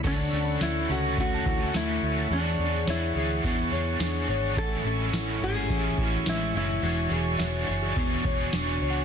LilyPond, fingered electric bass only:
\new Staff \with { instrumentName = "Fingered electric bass" } { \clef bass \time 4/4 \key d \lydian \tempo 4 = 106 d,8 d,8 d,8 cis,8 d,8 d,8 d,8 d,8 | e,8 e,8 e,8 d,8 e,8 e,8 e,8 gis,,8 | a,,8 a,,8 a,,8 gis,,8 a,,8 a,,8 a,,8 fis,,8 | e,,8 e,,8 e,,8 fis,,8 e,,8 e,,8 e,,8 cis,8 | }